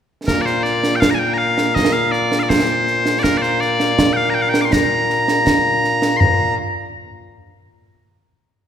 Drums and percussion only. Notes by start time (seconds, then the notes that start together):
0.28 concert bass drum, snare
0.46 snare
0.65 snare
0.84 snare
1.02 concert bass drum, snare
1.58 snare
1.76 concert bass drum, snare
2.13 snare
2.32 snare
2.50 concert bass drum, snare
2.87 snare
3.06 snare
3.24 concert bass drum, snare
3.43 snare
3.62 snare
3.80 snare
3.99 concert bass drum, snare
4.54 snare
4.73 concert bass drum, snare
5.10 snare
5.28 snare
5.47 concert bass drum, snare
5.84 snare
6.02 snare
6.21 mid tom